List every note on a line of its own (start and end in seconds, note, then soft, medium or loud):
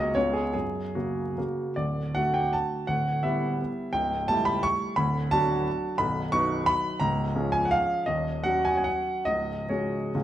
0.00 0.15 C#2 medium
0.00 0.12 C#3 soft
0.00 0.13 A#3 soft
0.00 0.13 F#4 soft
0.00 0.15 C#5 medium
0.00 0.15 D#5 medium
0.15 0.53 C#2 medium
0.15 0.50 C#3 soft
0.15 0.50 B3 soft
0.15 0.51 F4 soft
0.15 0.34 C#5 medium
0.34 0.52 G#4 medium
0.53 0.95 F#2 soft
0.53 0.96 G#4 medium
0.95 1.33 C#3 soft
0.95 1.34 A#3 soft
0.95 1.37 F#4 soft
1.38 1.73 C#3 soft
1.38 1.73 A#3 soft
1.38 1.73 F#4 soft
1.76 2.14 D1 soft
1.76 2.14 D2 soft
1.76 2.15 D5 medium
2.15 2.85 D3 soft
2.15 2.85 A3 soft
2.15 2.85 F#4 soft
2.15 2.34 F#5 medium
2.34 2.53 G5 medium
2.53 2.88 A5 medium
2.87 3.23 D1 soft
2.87 3.23 D2 medium
2.87 3.24 F#5 medium
3.23 3.90 G3 soft
3.23 3.90 B3 soft
3.23 3.91 E4 soft
3.23 3.94 E5 medium
3.93 4.28 C#1 soft
3.93 4.28 C#2 medium
3.93 4.29 G5 medium
4.28 4.93 G3 soft
4.28 4.93 A3 soft
4.28 4.94 E4 soft
4.28 4.47 A5 loud
4.45 4.63 B5 medium
4.63 4.97 C#6 loud
4.96 5.31 D1 medium
4.96 5.31 D2 medium
4.96 5.31 B5 medium
5.31 5.94 F#3 soft
5.31 5.94 D4 soft
5.31 5.95 F#4 medium
5.31 5.98 A5 loud
5.98 6.32 B0 medium
5.98 6.32 B1 medium
5.98 6.32 B5 medium
6.32 6.97 F#3 soft
6.32 6.98 D#4 medium
6.32 6.98 B4 medium
6.32 6.68 C#6 loud
6.66 7.00 B5 loud
6.99 7.35 C#1 medium
6.99 7.35 C#2 medium
6.99 7.53 A#5 medium
7.35 8.03 F3 medium
7.35 8.03 C#4 medium
7.35 8.03 G#4 soft
7.52 7.64 G#5 loud
7.65 7.72 F#5 medium
7.71 8.06 F5 loud
8.06 8.44 D#1 medium
8.06 8.44 D#2 medium
8.06 8.45 D#5 medium
8.44 9.22 F#3 soft
8.44 9.22 C#4 soft
8.44 9.23 F#4 soft
8.44 8.65 F#5 medium
8.65 8.76 G#5 medium
8.77 8.86 G#5 medium
8.84 9.25 F#5 medium
9.25 9.69 C#1 soft
9.25 9.69 C#2 soft
9.25 9.70 D#5 medium
9.69 10.10 G#3 soft
9.69 10.10 C#4 soft
9.69 10.11 F#4 soft
9.69 10.14 C#5 medium
10.14 10.23 C#1 soft
10.14 10.23 C#2 soft
10.14 10.23 G#3 soft
10.14 10.23 C#4 soft
10.14 10.23 F4 soft